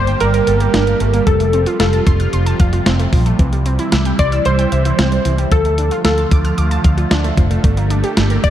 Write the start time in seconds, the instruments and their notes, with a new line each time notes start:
Already playing: fretless electric bass G1, analog synth pad D3 G3 A#3 G4, analog polysynth C5
0.07 synth arpeggio sound G5, closed hi-hat
0.20 fretless electric bass G1, analog polysynth A#4, synth arpeggio sound D5, closed hi-hat
0.34 synth arpeggio sound A#4, closed hi-hat
0.47 fretless electric bass G1, synth arpeggio sound A4, closed hi-hat
0.60 synth arpeggio sound G4, closed hi-hat
0.74 fretless electric bass G1, synth arpeggio sound D4, snare, closed hi-hat
0.87 synth arpeggio sound A#3, closed hi-hat
1.00 fretless electric bass G1, synth arpeggio sound A3, closed hi-hat
1.14 synth arpeggio sound A#3, closed hi-hat
1.27 fretless electric bass F1, analog synth pad C3 F3 F4, synth arpeggio sound F3, analog polysynth A4, kick, closed hi-hat
1.40 synth arpeggio sound A3, closed hi-hat
1.53 synth arpeggio sound C4, closed hi-hat
1.66 synth arpeggio sound F4, closed hi-hat
1.80 fretless electric bass F1, analog polysynth A4, synth arpeggio sound F5, snare, closed hi-hat
1.93 synth arpeggio sound A5, closed hi-hat
2.06 fretless electric bass F1, synth arpeggio sound C6, kick, closed hi-hat
2.20 synth arpeggio sound F6, closed hi-hat
2.33 fretless electric bass F1, synth arpeggio sound C6, closed hi-hat
2.46 synth arpeggio sound A5, closed hi-hat
2.60 fretless electric bass F1, synth arpeggio sound F5, kick, closed hi-hat
2.73 synth arpeggio sound F4, closed hi-hat
2.86 fretless electric bass F1, synth arpeggio sound C4, snare, closed hi-hat
2.99 synth arpeggio sound A3, closed hi-hat
3.13 fretless electric bass A#1, synth arpeggio sound F3, kick, open hi-hat
3.26 synth arpeggio sound A3, closed hi-hat
3.39 fretless electric bass C2, synth arpeggio sound E3, analog synth pad E3 G3 E4, kick, closed hi-hat
3.52 synth arpeggio sound G3, closed hi-hat
3.66 synth arpeggio sound C4, closed hi-hat
3.79 synth arpeggio sound E4, closed hi-hat
3.92 fretless electric bass C2, synth arpeggio sound E5, snare, closed hi-hat
4.05 synth arpeggio sound G5, closed hi-hat
4.19 fretless electric bass C2, analog polysynth D5, synth arpeggio sound C6, kick, closed hi-hat
4.32 synth arpeggio sound E6, closed hi-hat
4.45 fretless electric bass C2, analog polysynth C5, synth arpeggio sound C6, closed hi-hat
4.59 synth arpeggio sound G5, closed hi-hat
4.72 fretless electric bass C2, synth arpeggio sound E5, closed hi-hat
4.85 synth arpeggio sound E4, closed hi-hat
4.98 fretless electric bass C2, synth arpeggio sound C4, snare, closed hi-hat
5.12 synth arpeggio sound G3, closed hi-hat
5.25 fretless electric bass C2, synth arpeggio sound E3, closed hi-hat
5.38 synth arpeggio sound G3, closed hi-hat
5.52 fretless electric bass D2, analog synth pad D3 F3 A3 F4, synth arpeggio sound F3, analog polysynth A4, kick, closed hi-hat
5.65 synth arpeggio sound A3, closed hi-hat
5.78 synth arpeggio sound D4, closed hi-hat
5.91 synth arpeggio sound F4, closed hi-hat
6.05 fretless electric bass D2, analog polysynth A4, synth arpeggio sound F5, snare, closed hi-hat
6.18 synth arpeggio sound A5, closed hi-hat
6.31 fretless electric bass D2, synth arpeggio sound D6, kick, closed hi-hat
6.45 synth arpeggio sound F6, closed hi-hat
6.58 fretless electric bass D2, synth arpeggio sound D6, closed hi-hat
6.71 synth arpeggio sound A5, closed hi-hat
6.84 fretless electric bass D2, synth arpeggio sound F5, kick, closed hi-hat
6.97 synth arpeggio sound F4, closed hi-hat
7.11 fretless electric bass D2, synth arpeggio sound D4, snare, closed hi-hat
7.24 synth arpeggio sound A3, closed hi-hat
7.37 fretless electric bass F1, synth arpeggio sound F3, kick, closed hi-hat
7.51 synth arpeggio sound A3, closed hi-hat
7.64 fretless electric bass G1, synth arpeggio sound A3, analog synth pad A#3 G4, kick, closed hi-hat
7.77 synth arpeggio sound A#3, closed hi-hat
7.90 synth arpeggio sound D4, closed hi-hat
8.04 synth arpeggio sound G4, closed hi-hat
8.17 fretless electric bass G1, synth arpeggio sound A4, snare, closed hi-hat
8.30 synth arpeggio sound A#4, closed hi-hat
8.44 fretless electric bass G1, synth arpeggio sound D5, analog polysynth D5, kick, closed hi-hat